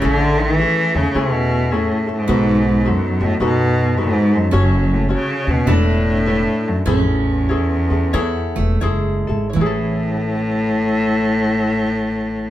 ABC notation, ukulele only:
X:1
M:4/4
L:1/8
Q:"Swing" 1/4=104
K:A
V:1 name="Ukulele"
[CEGA]2 [CEGA] [CEA] [CEGA]2 [CEGA] [CEA] | [^DFAB]2 [DFAB] [DFA] [DFAB]2 [DFAB] [DFA] | [CFAc]2 [CFAc] [CFc] [DEAB]2 [DEAB]2 | [EGAc]2 [EGAc] [EGA] [EGAc]2 [EGAc] [EGA] |
[EGAc]8 |]